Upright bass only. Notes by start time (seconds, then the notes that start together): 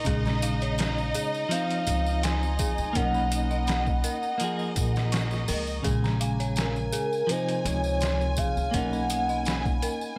0.07 A#1
1.87 C#2
2.79 C#2
2.96 B1
4.76 A#1
5.49 C#2
5.85 A#1
7.65 C#2
8.57 C#2
8.74 B1